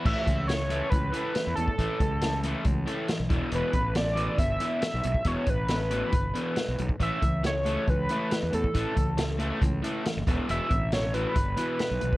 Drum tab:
CC |x---------------|----------------|----------------|----------------|
HH |--x-x-x-x-x-x-x-|x-x-x-x-x-x-x-x-|x-x-x-x-x-x-x-x-|x-x-x-x-x-x-x-x-|
SD |----o-------o---|----o-------o---|----o-------o---|----o-------o---|
BD |o-o-----o------o|o-o-----o-----o-|--o-----o------o|o-o-----o------o|

CC |----------------|----------------|----------------|
HH |x-x-x-x-x-x-x-x-|x-x-x-x-x-x-x-x-|x-x-x-x-x-x-x-x-|
SD |----o-------o---|----o-------o---|----o-------o---|
BD |o-o-----o------o|o-o-----o-----o-|--o-----o------o|